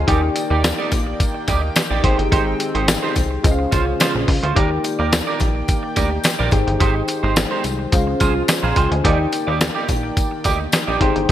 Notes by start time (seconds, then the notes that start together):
Already playing: D#5 G#5
0.07 D#2 D#3 A#3 D#4 G4 A#4 D5 G5, kick, closed hi-hat, tambourine
0.22 muted clean electric guitar stroke
0.35 muted clean electric guitar stroke, closed hi-hat, tambourine
0.50 D#2 D#4 G4 D5
0.64 snare, closed hi-hat, tambourine
0.78 D#4 G4 D5
0.92 A#1, kick, closed hi-hat, tambourine
1.07 muted clean electric guitar stroke
1.20 kick, closed hi-hat, tambourine
1.35 muted clean electric guitar stroke
1.48 D2 D#4 G4 D5, kick, closed hi-hat, tambourine
1.62 muted clean electric guitar stroke
1.76 muted clean electric guitar stroke, snare, closed hi-hat, tambourine
1.90 A#1 D#4 G4 D5
2.03 G#1 G#3 C4 D#4 G4 G#4 C5 G5, kick, closed hi-hat
2.18 G1, muted clean electric guitar stroke, closed hi-hat
2.32 G#1 D#4 G4 C5, kick, closed hi-hat, tambourine
2.47 muted clean electric guitar stroke
2.60 muted clean electric guitar stroke, closed hi-hat, tambourine
2.75 G#1 D#4 G4 C5, closed hi-hat
2.88 muted clean electric guitar stroke, snare, closed hi-hat, tambourine
3.03 D#4 G4 C5
3.16 C2, muted clean electric guitar stroke, kick, closed hi-hat, tambourine
3.31 muted clean electric guitar stroke
3.43 C#2 C#3 G#3 C#4 F4 G#4 C5 D#5, kick, closed hi-hat, tambourine
3.51 F5
3.59 muted clean electric guitar stroke
3.71 C2 C#4 F4 C5, kick, closed hi-hat, tambourine
3.86 muted clean electric guitar stroke
4.00 C#4 F4 C5, snare, closed hi-hat, tambourine
4.14 A#1, muted clean electric guitar stroke
4.28 C#2, muted clean electric guitar stroke, kick, open hi-hat
4.43 D2 C#4 F4 C5, closed hi-hat
4.55 D#2 D#3 A#3 D#4 G4 A#4 D5 G5, kick, closed hi-hat
4.71 muted clean electric guitar stroke
4.84 muted clean electric guitar stroke, closed hi-hat, tambourine
4.99 D#2 G4 A#4 D5
5.12 snare, closed hi-hat, tambourine
5.27 G4 A#4 D5
5.40 A#1, muted clean electric guitar stroke, kick, closed hi-hat, tambourine
5.55 muted clean electric guitar stroke
5.68 kick, closed hi-hat, tambourine
5.83 muted clean electric guitar stroke
5.96 D2 G4 A#4 D5, kick, closed hi-hat, tambourine
6.11 muted clean electric guitar stroke
6.24 muted clean electric guitar stroke, snare, closed hi-hat, tambourine
6.39 A#1 G4 A#4 D5
6.51 G#1 G#3 D#4 G4 G#4 C5 G5, muted clean electric guitar stroke, kick, closed hi-hat, tambourine
6.67 G1, muted clean electric guitar stroke, closed hi-hat
6.80 G#1 D#4 G4 C5, kick, closed hi-hat, tambourine
6.95 muted clean electric guitar stroke
7.08 muted clean electric guitar stroke, closed hi-hat, tambourine
7.23 G#1 D#4 G4 C5
7.36 muted clean electric guitar stroke, snare, closed hi-hat, tambourine
7.51 D#4 G4 C5
7.64 C2, muted clean electric guitar stroke, closed hi-hat, tambourine
7.79 muted clean electric guitar stroke
7.92 C#2 C#3 C#4 F4 G#4 C5 F5, kick, closed hi-hat, tambourine
8.07 muted clean electric guitar stroke
8.20 C2 F4 G#4 C5, kick, closed hi-hat, tambourine
8.35 muted clean electric guitar stroke
8.48 muted clean electric guitar stroke, snare, closed hi-hat, tambourine
8.63 A#1 F4 G#4 C5 F5 A#5
8.76 C#2 F4 G#4 C5 G5 C6, kick, closed hi-hat, tambourine
8.91 D2 D#5 G#5, muted clean electric guitar stroke, closed hi-hat
9.04 D#2 D#3 A#3 D#4 G4 A#4 D5 F5 G5, kick, closed hi-hat
9.12 G5
9.19 muted clean electric guitar stroke
9.32 muted clean electric guitar stroke, closed hi-hat, tambourine
9.47 D#2 D#4 G4 D5
9.61 snare, closed hi-hat, tambourine
9.75 D#4 G4 D5
9.88 A#1, kick, closed hi-hat, tambourine
10.03 muted clean electric guitar stroke
10.17 kick, closed hi-hat, tambourine
10.31 muted clean electric guitar stroke
10.44 D2 D#4 G4 D5, kick, closed hi-hat, tambourine
10.60 muted clean electric guitar stroke
10.72 muted clean electric guitar stroke, snare, closed hi-hat, tambourine
10.87 A#1 D#4 G4 D5
11.00 G#1 G#3 D#4 G4 G#4 C5 G5, kick, closed hi-hat
11.16 G1, muted clean electric guitar stroke, closed hi-hat